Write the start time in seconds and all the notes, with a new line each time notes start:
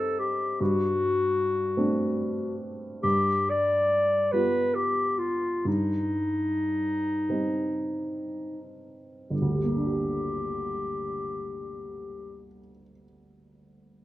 Already playing: G2 G3 C4 D#4 A4
0.20 G4
0.61 G2 F#4
1.77 A3 C4 D4
3.03 G2 G4
3.50 D5
4.32 G3 B3 F4 B4
4.75 G4
5.18 F4
5.65 G2 D#4
7.29 G3 C4 D#4
9.30 G1 G4
9.42 D2
9.53 G3
9.64 A#3
9.75 D4
9.86 G4